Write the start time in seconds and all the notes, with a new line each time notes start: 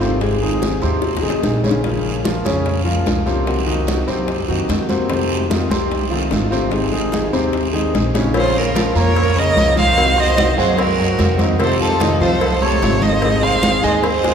Already playing: G#1
0.00 C3 D#3 A3 C4 F4 C5, high bongo, high conga, short guiro
0.21 D#3 G#3 C4 D#4 G#4, high bongo, high conga, long guiro
0.42 D#3 D#4 G#4, high conga
0.62 G#3 C4 D#4 G#4, high bongo, high conga, short guiro
0.82 D#2 C3 C4 C5, high bongo, high conga, short guiro
1.02 muted nylon-string guitar stroke, high bongo, high conga, long guiro
1.17 high bongo
1.22 C2 D#3 G#3 C4 D#4 G#4, high conga
1.30 high bongo
1.43 A#1 G#3 C4 D#4 G#4, low bongo, high conga, short guiro
1.63 C#3 G#3 C4 C#4 D#4 G#4 C#5, high conga, short guiro
1.71 low bongo
1.84 C#3 F3 A#3 C#4 F4 C#5, high bongo, high conga, long guiro
2.06 high conga
2.25 F3 A#3 C#4 F4 A#4, high bongo, high conga, short guiro
2.45 F2 C#3 C#4 C#5, high bongo, high conga, short guiro
2.66 muted nylon-string guitar stroke, high bongo, high conga, long guiro
2.85 F3 A#3 C#4 F4 A#4, high bongo, high conga
3.06 C2 F3 A#3 C#4 F4, high bongo, low bongo, high conga, short guiro
3.26 C3 A#3 C4 C#4 F4 C5, high bongo, high conga, short guiro
3.46 C3 D#3 A#3 C4 F#4, high bongo, high conga, long guiro
3.66 D#3 D#4 F#4, high conga
3.87 D#3 A#3 C4 F#4, high bongo, high conga, short guiro
4.07 F#2 C3 C4 C5, high bongo, high conga, short guiro
4.28 muted nylon-string guitar stroke, high bongo, high conga, long guiro
4.48 F#2 D#3 A#3 C4 D#4 F#4, high bongo, high conga
4.69 F2 D#3 A#3 C4 F#4, high bongo, low bongo, high conga, short guiro
4.89 C3 D#3 A#3 C4 F#4 C5, high bongo, high conga, short guiro
5.09 C3 D#3 A3 C4 F4 C5, high bongo, high conga, long guiro
5.31 high conga
5.49 D#3 A3 C4 D#4 F4, high bongo, high conga, short guiro
5.70 C2 C3 C4 C5, high bongo, high conga, short guiro
5.90 muted nylon-string guitar stroke, high bongo, high conga, long guiro
6.11 D#3 A3 C4 D#4 F4, high bongo, high conga
6.30 G#1 D#3 A3 C4 F4, high bongo, low bongo, high conga, short guiro
6.50 C3 D#3 A3 C4 F4 C5, high bongo, high conga, short guiro
6.71 D#3 G#3 C4 D#4 G#4, high bongo, high conga, long guiro
6.92 D#3 D#4 G#4, high conga
7.12 G#3 C4 D#4 G#4, high bongo, high conga, short guiro
7.33 D#2 C3 C4 C5, high bongo, high conga, short guiro
7.53 muted nylon-string guitar stroke, high bongo, high conga, long guiro
7.73 D#3 G#3 C4 D#4 G#4, high bongo, high conga
7.94 A#1 G#3 C4 D#4 G#4, high bongo, low bongo, high conga, short guiro
8.14 C#3 G#3 C4 C#4 D#4 G#4 C#5, high bongo, high conga, short guiro
8.34 C#3 F3 A#3 C#4 F4 C5 C#5, cowbell, high conga, long guiro
8.54 A#3 C#4 F4, high conga
8.58 F4 A#4
8.75 F3 A#3 C#4 F4 F5, cowbell, high conga, short guiro
8.94 F2 A#3 C#4 F4 A#4 C#5 A#5, high conga, short guiro
9.15 muted nylon-string guitar stroke, cowbell, high conga, long guiro
9.36 C#3 C#4 A#4 C#5 D#5, high conga
9.54 C2 F3 A#3 C#4 F4, cowbell, high conga, short guiro
9.76 D#3 A#3 C#4 D#4 F4 C5 D#5, high conga, short guiro
9.80 F5
9.96 C3 D#3 A#3 C4 F#4, cowbell, high conga, long guiro
10.16 A#3 C4 F#4 C5 D#5 C6, high conga
10.36 C3 D#3 A#3 C4 F#4, cowbell, high conga, short guiro
10.57 F#2 F#3 A#3 C4 F#4 G#4 C5 F#5, high conga, short guiro
10.77 C4 F#4 A#4 C5 C6, muted nylon-string guitar stroke, cowbell, high conga, long guiro
10.99 F#3 F#4 F#5, high conga
11.18 F2 C3 D#3 A#3 C4 F#4, cowbell, high conga, short guiro
11.38 D#3 A#3 C4 D#4 F#4 D#5, cowbell, high conga, short guiro
11.58 C3 D#3 A3 C4 F4 A4 C5, cowbell, high conga, long guiro
11.79 A3 C4 F4 A4, high conga
12.00 C3 D#3 A3 C4 D#4 F4 D#5, cowbell, high conga, short guiro
12.20 C2 F3 A3 C4 F4 A4 C5 F5, high conga, short guiro
12.41 muted nylon-string guitar stroke, cowbell, high conga, long guiro
12.62 C3 A3 A4 C#5 C6, high conga
12.81 G#1 C3 D#3 A3 C4 F4, cowbell, high conga, short guiro
13.02 D#3 A3 C4 D#4 C5 D#5, high conga, short guiro
13.22 D#3 G#3 C4 D#4 G#4, cowbell, high conga, long guiro
13.42 C4 D#4 G#4 C5 F5 C6, high conga
13.62 D#3 G#3 C4 D#4 G#4, cowbell, high conga, short guiro
13.83 D#2 G#3 C4 D#4 G#4 C5 D#5 G#5, high conga, short guiro
14.01 C4 G#4 C5 C6, muted nylon-string guitar stroke, cowbell, high conga, long guiro
14.23 G#3 G#4 G#5, high bongo, high conga